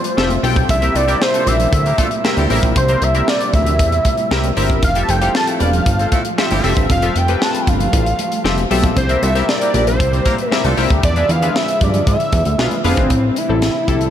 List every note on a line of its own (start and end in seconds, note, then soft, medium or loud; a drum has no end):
0.00 0.65 F3 medium
0.00 8.93 G3 medium
0.00 0.65 A3 medium
0.00 0.65 F4 loud
0.00 0.40 C5 medium
0.04 closed hi-hat soft
0.17 0.38 F1 loud
0.17 0.36 C4 loud
0.17 0.36 F4 medium
0.17 0.36 G4 medium
0.17 0.36 A4 medium
0.17 0.36 E5 loud
0.17 snare loud
0.17 muted conga soft
0.17 high conga medium
0.30 closed hi-hat soft
0.30 muted conga soft
0.30 high conga medium
0.43 0.64 B1 loud
0.43 0.69 C4 medium
0.43 0.69 F4 medium
0.43 0.69 G4 medium
0.43 0.69 A4 medium
0.43 0.69 G5 loud
0.43 open hi-hat medium
0.56 kick loud
0.56 closed hi-hat soft
0.69 0.90 C2 loud
0.69 4.79 C3 medium
0.69 4.79 A#3 medium
0.69 4.79 E4 medium
0.69 0.97 E5 loud
0.69 kick loud
0.69 closed hi-hat medium
0.69 low conga medium
0.82 1.00 C4 medium
0.82 1.00 E4 medium
0.82 1.00 G4 medium
0.82 1.00 A#4 medium
0.82 1.01 E5 medium
0.82 closed hi-hat medium
0.82 muted conga soft
0.95 1.16 C2 loud
0.95 1.05 A3 medium
0.95 1.05 D4 medium
0.95 1.05 F4 medium
0.95 1.05 A4 loud
0.95 1.23 D5 loud
0.95 closed hi-hat medium
1.07 1.18 G3 medium
1.07 1.81 C4 medium
1.07 1.18 C4 medium
1.07 1.81 E4 medium
1.07 1.18 E4 medium
1.07 1.18 G4 medium
1.07 1.81 G4 medium
1.07 1.81 A#4 medium
1.07 1.82 E5 medium
1.07 closed hi-hat medium
1.07 high conga medium
1.21 1.49 C5 loud
1.21 snare loud
1.21 muted conga soft
1.34 1.44 A3 medium
1.34 1.44 D4 medium
1.34 1.44 F4 medium
1.34 1.44 A4 medium
1.34 closed hi-hat medium
1.34 muted conga soft
1.47 1.67 A#1 loud
1.47 1.57 C4 medium
1.47 1.57 E4 medium
1.47 1.57 G4 medium
1.47 1.57 C5 medium
1.47 2.50 E5 loud
1.47 closed hi-hat medium
1.47 high conga medium
1.47 low conga medium
1.59 closed hi-hat medium
1.59 low conga medium
1.72 1.93 D2 loud
1.72 kick loud
1.72 closed hi-hat medium
1.86 1.96 A#3 medium
1.86 1.96 E4 medium
1.86 1.96 G4 medium
1.86 1.96 A#4 medium
1.86 closed hi-hat soft
1.98 2.09 A3 medium
1.98 2.09 D4 medium
1.98 2.09 F4 medium
1.98 2.09 A4 loud
1.98 kick medium
1.98 closed hi-hat medium
1.98 high conga medium
2.11 closed hi-hat soft
2.24 2.42 C4 loud
2.24 2.43 E4 medium
2.24 2.43 G4 medium
2.24 2.43 A#4 medium
2.24 2.43 E5 loud
2.24 snare loud
2.24 high conga medium
2.37 2.47 D2 loud
2.37 2.58 G3 loud
2.37 2.58 C4 loud
2.37 2.58 E4 loud
2.37 2.58 G4 loud
2.37 closed hi-hat soft
2.37 muted conga soft
2.37 high conga medium
2.50 2.60 A1 medium
2.50 2.77 C4 medium
2.50 2.78 E4 medium
2.50 2.78 G4 medium
2.50 2.78 A#4 medium
2.50 2.78 E5 loud
2.50 open hi-hat medium
2.63 2.73 A#1 loud
2.63 kick loud
2.63 closed hi-hat medium
2.75 2.97 C2 loud
2.75 3.05 C5 loud
2.75 kick loud
2.75 closed hi-hat loud
2.75 muted conga soft
2.75 low conga medium
2.88 3.07 C4 medium
2.88 3.07 E4 medium
2.88 3.07 G4 medium
2.88 3.07 A#4 medium
2.88 3.07 C5 loud
2.88 closed hi-hat medium
2.88 muted conga soft
3.02 3.22 C2 loud
3.02 3.30 E5 loud
3.02 closed hi-hat medium
3.14 3.88 C4 medium
3.14 3.88 E4 medium
3.14 3.88 G4 medium
3.14 3.88 A#4 medium
3.14 3.89 E5 medium
3.14 closed hi-hat medium
3.14 high conga medium
3.28 3.54 D5 loud
3.28 snare loud
3.28 muted conga soft
3.40 closed hi-hat medium
3.40 muted conga soft
3.54 3.81 D2 loud
3.54 4.54 E5 loud
3.54 kick loud
3.54 closed hi-hat medium
3.54 high conga medium
3.54 low conga medium
3.66 closed hi-hat medium
3.66 low conga medium
3.79 4.00 E2 loud
3.79 kick loud
3.79 closed hi-hat medium
3.79 muted conga soft
3.92 closed hi-hat soft
4.05 kick medium
4.05 closed hi-hat medium
4.05 high conga medium
4.18 closed hi-hat soft
4.31 4.52 C2 loud
4.31 4.49 C4 medium
4.31 4.49 E4 medium
4.31 4.50 G4 medium
4.31 4.50 A#4 medium
4.31 4.50 E5 loud
4.31 snare loud
4.31 muted conga soft
4.31 high conga medium
4.44 closed hi-hat medium
4.44 muted conga soft
4.44 high conga medium
4.57 4.84 G1 medium
4.57 4.83 C4 loud
4.57 4.83 E4 medium
4.57 4.83 G4 medium
4.57 4.83 A#4 medium
4.57 4.83 E5 loud
4.57 open hi-hat medium
4.70 kick medium
4.70 closed hi-hat soft
4.82 5.04 F1 loud
4.82 8.93 F3 medium
4.82 8.93 A3 medium
4.82 8.93 F4 loud
4.82 5.02 F5 loud
4.82 kick loud
4.82 closed hi-hat medium
4.82 muted conga soft
4.82 low conga medium
4.95 5.14 C4 medium
4.95 5.14 F4 medium
4.95 5.14 G4 medium
4.95 5.14 A4 medium
4.95 5.14 E5 medium
4.95 closed hi-hat medium
5.03 5.11 A5 medium
5.08 5.30 F1 loud
5.08 5.19 A3 medium
5.08 5.19 C4 medium
5.08 5.19 E4 medium
5.08 5.19 A4 medium
5.08 5.35 G5 medium
5.08 closed hi-hat medium
5.21 5.32 G3 medium
5.21 5.32 C4 medium
5.21 5.95 C4 medium
5.21 5.32 E4 medium
5.21 5.95 F4 medium
5.21 5.32 G4 loud
5.21 5.95 G4 medium
5.21 5.95 A4 medium
5.21 5.95 F5 medium
5.21 closed hi-hat medium
5.21 high conga medium
5.35 5.48 A5 loud
5.35 snare loud
5.47 5.58 A3 medium
5.47 5.58 C4 medium
5.47 5.58 E4 medium
5.47 5.58 A4 medium
5.47 closed hi-hat medium
5.60 5.81 E1 loud
5.60 5.70 D4 medium
5.60 5.70 G4 medium
5.60 5.70 B4 medium
5.60 5.70 D5 loud
5.60 6.61 F5 medium
5.60 closed hi-hat medium
5.60 high conga medium
5.60 low conga medium
5.73 closed hi-hat medium
5.73 low conga medium
5.86 6.07 G1 loud
5.86 kick loud
5.86 closed hi-hat medium
5.86 muted conga soft
5.99 6.10 C4 medium
5.99 6.09 G4 medium
5.99 6.10 A4 medium
5.99 6.10 C5 medium
5.99 closed hi-hat soft
6.12 6.22 A3 medium
6.12 6.23 C4 medium
6.12 6.23 E4 medium
6.12 6.22 A4 medium
6.12 kick medium
6.12 closed hi-hat medium
6.12 high conga medium
6.25 closed hi-hat soft
6.38 6.56 C4 loud
6.38 6.56 F4 medium
6.38 6.57 G4 medium
6.38 6.57 A4 medium
6.38 6.57 E5 loud
6.38 snare loud
6.38 muted conga soft
6.38 high conga medium
6.51 6.61 G1 medium
6.51 6.72 G3 loud
6.51 6.72 C4 loud
6.51 6.72 E4 loud
6.51 6.72 G4 loud
6.51 closed hi-hat soft
6.51 muted conga soft
6.51 high conga medium
6.64 6.74 F1 loud
6.64 6.91 C4 loud
6.64 6.91 F4 medium
6.64 6.91 G4 medium
6.64 6.92 A4 medium
6.64 6.92 E5 loud
6.64 open hi-hat medium
6.77 6.87 G1 loud
6.77 kick loud
6.77 closed hi-hat medium
6.89 7.10 F1 loud
6.89 7.19 F5 loud
6.89 kick loud
6.89 closed hi-hat loud
6.89 low conga medium
7.02 7.21 C4 medium
7.02 7.21 F4 medium
7.02 7.21 G4 medium
7.02 7.21 A4 medium
7.02 7.21 E5 medium
7.02 closed hi-hat medium
7.02 muted conga soft
7.16 7.36 F1 loud
7.16 7.44 G5 loud
7.16 closed hi-hat medium
7.28 8.02 C4 medium
7.28 8.02 F4 medium
7.28 8.02 G4 medium
7.28 8.02 A4 medium
7.28 8.02 B4 loud
7.28 closed hi-hat medium
7.28 high conga medium
7.42 7.63 A5 loud
7.42 snare loud
7.54 closed hi-hat medium
7.54 muted conga soft
7.61 7.70 G5 medium
7.67 7.88 G1 medium
7.67 8.71 F5 loud
7.67 kick loud
7.67 closed hi-hat medium
7.67 high conga medium
7.67 low conga medium
7.80 closed hi-hat medium
7.80 low conga medium
7.93 8.14 A1 loud
7.93 kick loud
7.93 closed hi-hat medium
7.93 muted conga soft
8.06 closed hi-hat soft
8.06 muted conga soft
8.19 closed hi-hat medium
8.19 high conga medium
8.32 closed hi-hat soft
8.44 8.66 F1 loud
8.44 8.63 C4 loud
8.44 8.63 F4 medium
8.44 8.63 G4 medium
8.44 8.63 A4 medium
8.44 8.64 E5 medium
8.44 snare loud
8.44 muted conga soft
8.44 high conga medium
8.57 closed hi-hat soft
8.57 muted conga soft
8.57 high conga medium
8.71 8.92 B1 loud
8.71 8.97 C4 loud
8.71 8.97 F4 medium
8.71 8.97 G4 medium
8.71 8.97 A4 medium
8.71 8.97 E5 loud
8.71 open hi-hat medium
8.84 kick loud
8.84 closed hi-hat medium
8.96 9.17 C2 loud
8.96 11.01 C3 medium
8.96 11.01 G3 medium
8.96 11.01 A#3 medium
8.96 9.24 C5 loud
8.96 13.06 E5 medium
8.96 kick loud
8.96 closed hi-hat loud
8.96 low conga medium
9.09 9.28 C4 medium
9.09 9.28 E4 medium
9.09 9.28 G4 medium
9.09 9.28 A#4 medium
9.09 9.28 E5 loud
9.09 closed hi-hat medium
9.09 muted conga soft
9.22 9.43 C2 loud
9.22 9.33 A3 medium
9.22 9.33 D4 medium
9.22 9.33 F4 medium
9.22 9.33 A4 medium
9.22 9.50 E5 loud
9.22 closed hi-hat medium
9.35 9.46 G3 medium
9.35 10.09 C4 medium
9.35 9.46 C4 medium
9.35 10.09 E4 medium
9.35 9.46 E4 medium
9.35 10.09 G4 medium
9.35 9.46 G4 loud
9.35 10.09 A#4 medium
9.35 10.09 E5 medium
9.35 closed hi-hat medium
9.35 high conga medium
9.49 9.87 D5 loud
9.49 snare loud
9.61 9.72 A#3 medium
9.61 9.71 E4 medium
9.61 9.72 G4 medium
9.61 9.72 A#4 medium
9.61 closed hi-hat medium
9.74 10.02 A#1 medium
9.74 9.84 D4 medium
9.74 9.84 G4 medium
9.74 9.84 A#4 medium
9.74 9.84 D5 loud
9.74 closed hi-hat medium
9.74 high conga medium
9.74 low conga medium
9.87 10.50 C5 medium
9.87 closed hi-hat medium
9.87 low conga medium
10.00 10.21 C2 loud
10.00 kick loud
10.00 closed hi-hat medium
10.13 10.23 C4 medium
10.13 10.23 E4 medium
10.13 10.23 G4 medium
10.13 10.23 C5 medium
10.13 closed hi-hat soft
10.26 10.36 A#3 loud
10.26 10.36 E4 loud
10.26 10.36 G4 medium
10.26 10.36 A#4 loud
10.26 kick medium
10.26 closed hi-hat medium
10.26 high conga medium
10.38 closed hi-hat soft
10.50 10.70 C4 medium
10.50 10.70 E4 medium
10.50 10.70 G4 medium
10.50 10.74 A#4 medium
10.50 10.70 A#4 medium
10.50 10.70 E5 loud
10.50 snare medium
10.50 high conga medium
10.64 10.75 C2 medium
10.64 10.85 A3 medium
10.64 10.85 D4 loud
10.64 10.85 F4 medium
10.64 10.85 A4 loud
10.64 closed hi-hat soft
10.64 high conga medium
10.77 10.88 C2 medium
10.77 11.03 C4 medium
10.77 11.03 E4 medium
10.77 11.03 G4 loud
10.77 11.04 A#4 medium
10.77 11.04 E5 loud
10.77 open hi-hat medium
10.90 11.01 D2 medium
10.90 kick loud
10.90 closed hi-hat medium
11.03 11.24 E2 loud
11.03 13.08 D3 medium
11.03 13.08 F3 medium
11.03 13.08 G#3 medium
11.03 11.32 D5 loud
11.03 kick loud
11.03 closed hi-hat medium
11.03 muted conga soft
11.03 low conga medium
11.16 11.35 D4 medium
11.16 11.35 F4 medium
11.16 11.35 G#4 medium
11.16 11.35 B4 medium
11.16 11.35 E5 medium
11.16 closed hi-hat medium
11.16 muted conga soft
11.29 11.50 E2 loud
11.29 11.58 F5 loud
11.29 closed hi-hat medium
11.42 12.16 D4 medium
11.42 12.16 F4 medium
11.42 12.16 G#4 medium
11.42 12.16 B4 medium
11.42 12.16 E5 medium
11.42 closed hi-hat medium
11.42 high conga medium
11.56 11.85 E5 loud
11.56 snare loud
11.56 muted conga soft
11.68 closed hi-hat medium
11.81 12.02 G2 loud
11.81 12.08 D5 loud
11.81 kick medium
11.81 closed hi-hat medium
11.81 high conga medium
11.81 low conga medium
11.94 closed hi-hat medium
11.94 low conga medium
12.07 12.17 G#2 loud
12.07 12.81 E5 loud
12.07 kick loud
12.07 closed hi-hat medium
12.20 closed hi-hat soft
12.32 12.43 E2 medium
12.32 kick medium
12.32 closed hi-hat medium
12.32 high conga medium
12.45 12.56 D2 medium
12.45 closed hi-hat soft
12.58 12.69 B1 medium
12.58 12.77 D4 medium
12.58 12.77 F4 medium
12.58 12.77 G#4 medium
12.58 12.77 B4 medium
12.58 12.77 F5 medium
12.58 snare loud
12.58 muted conga soft
12.58 high conga medium
12.71 closed hi-hat soft
12.71 muted conga soft
12.71 high conga medium
12.84 12.95 F1 loud
12.84 13.39 C4 loud
12.84 13.10 D4 loud
12.84 13.10 F4 medium
12.84 13.10 G#4 medium
12.84 13.11 B4 medium
12.84 13.11 F5 loud
12.84 open hi-hat medium
12.97 13.08 G#1 loud
12.97 kick medium
12.97 closed hi-hat medium
13.10 13.31 A1 loud
13.10 14.10 C3 medium
13.10 14.10 G3 medium
13.10 14.10 A3 medium
13.10 14.10 E4 loud
13.10 kick loud
13.10 closed hi-hat medium
13.10 muted conga soft
13.10 low conga medium
13.24 muted conga soft
13.36 14.10 E4 medium
13.36 closed hi-hat medium
13.49 13.70 A1 loud
13.49 13.77 G3 medium
13.49 13.77 C4 medium
13.49 13.77 E4 medium
13.49 13.77 A4 medium
13.49 high conga medium
13.62 snare loud
13.62 closed hi-hat medium
13.62 muted conga soft
13.75 muted conga soft
13.88 14.09 C2 medium
13.88 14.10 G3 medium
13.88 14.10 C4 medium
13.88 14.10 E4 medium
13.88 14.10 A4 medium
13.88 kick medium
13.88 closed hi-hat medium
13.88 high conga medium
13.88 low conga medium
14.01 closed hi-hat soft